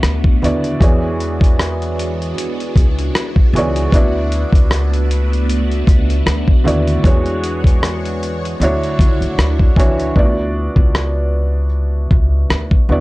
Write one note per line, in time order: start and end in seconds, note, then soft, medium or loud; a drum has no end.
0.00 0.35 D2 medium
0.00 0.78 A3 medium
0.00 0.78 B3 medium
0.00 0.76 D4 medium
0.00 0.77 F#4 medium
0.00 cross-stick loud
0.04 closed hi-hat medium
0.24 kick medium
0.42 0.74 D#2 medium
0.42 0.79 D3 medium
0.42 0.79 B3 medium
0.42 0.80 E4 medium
0.42 0.80 F#4 medium
0.42 0.81 D5 loud
0.42 closed hi-hat medium
0.64 closed hi-hat soft
0.80 2.33 E2 medium
0.80 2.29 E3 medium
0.80 3.89 G#3 medium
0.80 2.30 B3 medium
0.80 3.89 B3 medium
0.80 8.56 D4 medium
0.80 8.56 F#4 medium
0.80 2.30 F#4 medium
0.80 2.30 G#4 medium
0.80 2.31 C#5 medium
0.80 2.31 D5 medium
0.80 kick loud
0.80 closed hi-hat medium
1.20 closed hi-hat medium
1.41 kick loud
1.41 closed hi-hat soft
1.59 cross-stick loud
1.59 closed hi-hat medium
1.82 closed hi-hat soft
1.99 closed hi-hat medium
2.22 closed hi-hat soft
2.38 closed hi-hat medium
2.60 closed hi-hat soft
2.76 3.08 C#2 medium
2.76 kick medium
2.76 closed hi-hat medium
2.99 closed hi-hat soft
3.15 cross-stick loud
3.15 closed hi-hat medium
3.36 kick loud
3.53 3.86 C#2 loud
3.53 3.91 E3 medium
3.53 3.92 B3 medium
3.53 3.92 F#4 medium
3.53 3.92 G#4 medium
3.53 closed hi-hat medium
3.58 3.93 C#5 medium
3.58 3.93 D5 medium
3.76 closed hi-hat medium
3.92 4.43 D2 loud
3.92 7.01 A3 medium
3.92 7.01 B3 medium
3.92 5.42 B3 medium
3.92 5.42 D4 medium
3.92 5.42 E4 medium
3.92 5.43 F#4 medium
3.92 5.43 D5 medium
3.92 kick loud
3.92 closed hi-hat medium
4.32 closed hi-hat medium
4.53 5.83 C#2 medium
4.53 kick medium
4.53 closed hi-hat medium
4.71 cross-stick loud
4.71 closed hi-hat medium
4.93 closed hi-hat soft
5.11 closed hi-hat medium
5.33 closed hi-hat soft
5.49 closed hi-hat medium
5.71 closed hi-hat soft
5.87 6.20 C#2 loud
5.87 kick medium
5.87 closed hi-hat medium
6.10 closed hi-hat soft
6.26 6.58 D2 loud
6.26 cross-stick loud
6.26 closed hi-hat medium
6.48 kick loud
6.64 6.97 D#2 medium
6.64 7.02 D3 medium
6.64 7.02 B3 medium
6.64 7.03 E4 medium
6.64 7.03 F#4 medium
6.64 7.03 D5 medium
6.64 closed hi-hat medium
6.87 closed hi-hat soft
7.03 8.56 E2 medium
7.03 8.53 E3 medium
7.03 8.59 G#3 medium
7.03 8.53 B3 medium
7.03 8.53 D4 medium
7.03 8.54 F#4 medium
7.03 8.54 G#4 medium
7.03 10.13 C#5 medium
7.03 8.54 C#5 loud
7.03 kick loud
7.03 closed hi-hat medium
7.26 closed hi-hat soft
7.44 closed hi-hat medium
7.64 kick medium
7.64 closed hi-hat medium
7.83 cross-stick loud
7.83 closed hi-hat medium
8.05 closed hi-hat soft
8.23 closed hi-hat medium
8.45 closed hi-hat soft
8.59 8.92 D2 medium
8.59 9.72 D3 medium
8.59 10.14 F#3 medium
8.59 10.14 D4 medium
8.59 9.73 D4 medium
8.59 10.14 E4 medium
8.59 9.73 E4 medium
8.59 closed hi-hat medium
8.63 9.73 F#4 medium
8.63 9.74 C#5 loud
8.83 closed hi-hat soft
8.99 9.17 C#2 loud
8.99 kick medium
8.99 closed hi-hat medium
9.21 9.35 D2 medium
9.21 closed hi-hat soft
9.38 9.70 D2 medium
9.38 cross-stick loud
9.38 closed hi-hat medium
9.59 kick medium
9.76 10.09 C#2 medium
9.76 10.14 E3 medium
9.76 10.14 D4 medium
9.76 10.15 E4 medium
9.76 10.15 F#4 medium
9.76 10.16 C#5 medium
9.76 kick medium
9.76 closed hi-hat medium
10.00 closed hi-hat soft
10.16 10.66 D2 medium
10.16 11.65 B3 medium
10.16 11.65 D4 medium
10.16 11.65 E4 medium
10.16 10.24 F4 medium
10.16 11.66 D5 loud
10.16 kick medium
10.25 11.69 F#4 medium
10.76 12.07 C#2 medium
10.76 kick medium
10.95 cross-stick loud
12.11 12.43 C#2 medium
12.11 kick medium
12.50 12.82 D2 medium
12.50 cross-stick loud
12.71 kick medium
12.89 13.00 D#2 medium
12.89 13.00 D3 medium
12.89 13.00 B3 medium
12.89 13.00 E4 medium
12.89 13.00 F#4 medium
12.89 13.00 D5 medium